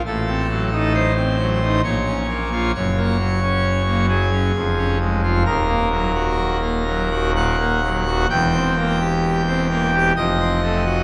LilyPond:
<<
  \new Staff \with { instrumentName = "Pipe organ" } { \time 3/4 \key ees \dorian \tempo 4 = 66 a'4 c''4 des''4 | des''4. aes'4 r8 | bes'2 ges''4 | g''2 ees''4 | }
  \new Staff \with { instrumentName = "Pipe organ" } { \time 3/4 \key ees \dorian << { a,16 c'16 fis16 ees'8 c'16 fis16 ees'16 bes,16 des'16 bes16 f'16 | ges,16 bes16 ges16 des'8 bes16 ges16 des'16 f,16 des'16 aes16 f'16 | ees,16 bes16 ges16 ges'8 bes16 ges16 ges'16 bes,16 bes16 ges16 ges'16 | e,16 c'16 bes16 g'8 c'16 bes16 g'16 f,16 c'16 a16 ges'16 | } \\ { a,,2 bes,,4 | ges,,2 f,,4 | ees,,2. | e,,2 f,,4 | } >> }
>>